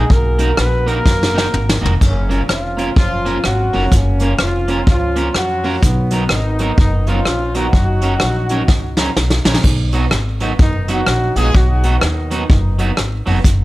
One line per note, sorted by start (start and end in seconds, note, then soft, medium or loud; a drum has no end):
0.00 0.11 G#3 medium
0.00 0.11 D#4 medium
0.00 0.11 G#4 medium
0.10 0.51 B1 medium
0.10 0.59 A#3 medium
0.10 0.57 F#4 medium
0.10 0.59 A#4 loud
0.10 kick loud
0.39 0.50 A#3 medium
0.39 0.50 D#4 medium
0.39 0.50 F#4 loud
0.39 0.51 A#4 medium
0.39 closed hi-hat medium
0.57 0.99 A#1 medium
0.57 0.86 B3 medium
0.57 0.85 F#4 medium
0.57 0.86 B4 medium
0.57 cross-stick loud
0.86 0.97 A#3 medium
0.86 1.83 A#3 loud
0.86 0.98 D#4 medium
0.86 1.83 F#4 medium
0.86 0.98 F#4 medium
0.86 1.83 A#4 loud
0.86 0.98 A#4 medium
0.86 closed hi-hat medium
1.06 1.46 F#1 medium
1.06 kick loud
1.06 snare medium
1.23 snare medium
1.34 1.45 A#3 medium
1.34 1.46 D#4 medium
1.34 1.46 F#4 medium
1.34 1.46 A#4 medium
1.34 snare medium
1.54 1.78 G#1 medium
1.54 mid tom medium
1.69 snare medium
1.81 1.98 F1 medium
1.81 1.93 A#3 medium
1.81 1.93 D#4 medium
1.81 1.93 F#4 medium
1.81 1.94 A#4 medium
1.85 floor tom medium
2.01 2.42 F#1 loud
2.01 2.45 C#3 medium
2.01 2.45 A#3 medium
2.01 2.45 C#4 medium
2.01 kick loud
2.01 splash medium
2.29 2.40 A#3 medium
2.29 2.41 C#4 medium
2.29 2.41 F4 medium
2.29 2.41 A#4 medium
2.29 closed hi-hat medium
2.48 2.89 F1 medium
2.48 2.93 F3 medium
2.48 2.93 C#4 medium
2.48 2.93 F4 medium
2.48 cross-stick loud
2.77 2.88 A#3 medium
2.77 2.89 C#4 medium
2.77 2.89 F4 medium
2.77 2.89 A#4 medium
2.77 closed hi-hat medium
2.96 3.37 F#1 medium
2.96 3.41 F3 loud
2.96 3.41 C#4 medium
2.96 3.41 F4 loud
2.96 kick loud
3.25 3.36 A#3 medium
3.25 3.37 C#4 medium
3.25 3.37 F4 medium
3.25 3.37 A#4 medium
3.25 closed hi-hat medium
3.44 3.69 G#1 medium
3.44 3.93 F#3 medium
3.44 3.93 C#4 medium
3.44 3.93 F#4 loud
3.44 cross-stick medium
3.73 3.90 F1 medium
3.73 3.84 A#3 medium
3.73 3.85 C#4 medium
3.73 3.85 F4 medium
3.73 3.85 A#4 medium
3.73 open hi-hat soft
3.92 4.33 F#1 medium
3.92 4.40 C#3 medium
3.92 4.40 A#3 medium
3.92 4.40 C#4 loud
3.92 kick loud
3.92 hi-hat pedal medium
4.20 4.32 A#3 medium
4.20 4.32 C#4 medium
4.20 4.33 F4 medium
4.20 4.33 A#4 medium
4.20 closed hi-hat medium
4.39 4.81 F1 medium
4.39 4.85 F3 medium
4.39 4.85 C#4 medium
4.39 4.85 F4 medium
4.39 cross-stick loud
4.68 4.79 A#3 medium
4.68 4.80 C#4 medium
4.68 4.80 F4 medium
4.68 4.80 A#4 medium
4.68 closed hi-hat medium
4.87 5.28 C#2 medium
4.87 5.33 F3 loud
4.87 5.32 C#4 medium
4.87 5.33 F4 loud
4.87 kick loud
5.16 5.27 A#3 medium
5.16 5.27 C#4 medium
5.16 5.28 F4 medium
5.16 5.28 A#4 loud
5.16 closed hi-hat medium
5.34 5.76 F2 medium
5.34 5.80 F#3 loud
5.34 5.79 C#4 medium
5.34 5.80 F#4 loud
5.34 cross-stick medium
5.64 5.75 A#3 medium
5.64 5.75 C#4 medium
5.64 5.75 F4 medium
5.64 5.76 A#4 loud
5.64 open hi-hat soft
5.82 6.23 B1 medium
5.82 6.30 F#3 medium
5.82 6.29 B3 medium
5.82 kick loud
5.82 hi-hat pedal medium
6.11 6.22 F#3 medium
6.11 6.23 B3 medium
6.11 6.23 D#4 medium
6.11 6.23 A#4 medium
6.11 closed hi-hat medium
6.29 6.71 G#1 medium
6.29 6.78 D#3 medium
6.29 6.77 B3 medium
6.29 6.78 D#4 medium
6.29 cross-stick loud
6.59 6.70 F#3 medium
6.59 6.71 B3 medium
6.59 6.71 D#4 medium
6.59 6.71 A#4 medium
6.59 closed hi-hat medium
6.78 7.19 F#1 medium
6.78 7.06 D#3 medium
6.78 7.05 B3 medium
6.78 7.06 D#4 loud
6.78 kick loud
7.07 7.56 F3 medium
7.07 7.18 F#3 medium
7.07 7.19 B3 medium
7.07 7.55 C#4 medium
7.07 7.19 D#4 medium
7.07 7.56 F4 loud
7.07 7.19 A#4 medium
7.07 closed hi-hat medium
7.25 7.66 A#1 medium
7.25 cross-stick medium
7.55 7.66 F#3 medium
7.55 9.17 F#3 medium
7.55 7.66 B3 medium
7.55 9.16 D#4 medium
7.55 7.66 D#4 medium
7.55 9.17 F#4 loud
7.55 7.67 A#4 medium
7.55 closed hi-hat medium
7.73 8.14 F#1 loud
7.73 kick loud
8.02 8.13 F#3 medium
8.02 8.13 C#4 medium
8.02 8.14 D#4 medium
8.02 8.14 A#4 medium
8.02 closed hi-hat medium
8.20 8.62 A#1 medium
8.20 cross-stick loud
8.49 8.61 F#3 medium
8.49 8.61 C#4 medium
8.49 8.62 D#4 medium
8.49 8.62 A#4 medium
8.49 closed hi-hat medium
8.68 9.09 C#2 medium
8.68 kick loud
8.68 snare medium
8.97 9.09 F#3 medium
8.97 9.09 C#4 medium
8.97 9.09 D#4 medium
8.97 9.10 A#4 medium
8.97 snare medium
9.16 9.41 B1 medium
9.16 snare medium
9.30 snare medium
9.45 9.61 A#1 medium
9.45 9.56 F#3 medium
9.45 9.56 C#4 medium
9.45 9.57 D#4 medium
9.45 9.57 A#4 medium
9.45 snare loud
9.54 snare medium
9.64 10.05 B1 loud
9.64 kick loud
9.64 crash loud
9.93 10.04 F#3 medium
9.93 10.04 B3 medium
9.93 10.05 D#4 medium
9.93 10.05 F#4 medium
9.93 closed hi-hat medium
10.11 10.52 G#1 medium
10.11 muted clean electric guitar stroke soft
10.11 cross-stick loud
10.40 10.51 D#3 medium
10.40 10.52 F#3 medium
10.40 10.49 B3 medium
10.40 10.52 B3 medium
10.40 10.52 D#4 medium
10.40 10.51 D#4 medium
10.40 10.53 F#4 medium
10.40 closed hi-hat medium
10.59 11.00 F#1 medium
10.59 10.88 D#3 medium
10.59 10.87 B3 medium
10.59 10.88 D#4 loud
10.59 kick loud
10.88 10.99 F#3 medium
10.88 11.37 F#3 medium
10.88 11.00 B3 medium
10.88 11.37 D#4 medium
10.88 11.00 D#4 medium
10.88 11.37 F#4 loud
10.88 11.00 F#4 medium
10.88 closed hi-hat medium
11.07 11.32 A#1 medium
11.07 cross-stick loud
11.36 11.52 A#1 loud
11.36 11.47 F#3 medium
11.36 11.55 G#3 loud
11.36 11.47 B3 medium
11.36 11.48 D#4 medium
11.36 11.55 F4 medium
11.36 11.48 F#4 medium
11.36 11.55 G#4 loud
11.36 closed hi-hat medium
11.55 11.95 B1 medium
11.55 12.02 F#3 loud
11.55 12.00 D#4 medium
11.55 12.02 F#4 loud
11.55 kick loud
11.83 11.95 F#3 medium
11.83 11.95 B3 medium
11.83 11.95 D#4 loud
11.83 11.96 F#4 medium
11.83 closed hi-hat medium
12.01 12.43 D#2 loud
12.01 12.97 D#3 medium
12.01 12.97 B3 medium
12.01 12.97 D#4 medium
12.01 muted clean electric guitar stroke soft
12.01 cross-stick loud
12.31 12.42 F#3 medium
12.31 12.42 B3 medium
12.31 12.43 D#4 medium
12.31 12.43 F#4 medium
12.31 closed hi-hat medium
12.50 12.90 F#1 medium
12.50 kick loud
12.79 12.90 F#3 medium
12.79 12.90 B3 medium
12.79 12.90 D#4 medium
12.79 12.91 F#4 loud
12.79 closed hi-hat medium
12.97 13.22 G#1 medium
12.97 cross-stick loud
13.26 13.42 F1 medium
13.26 13.37 F#3 medium
13.26 13.37 B3 loud
13.26 13.38 D#4 medium
13.26 13.38 F#4 loud
13.26 open hi-hat medium
13.44 13.65 F#1 loud
13.44 kick loud
13.44 hi-hat pedal medium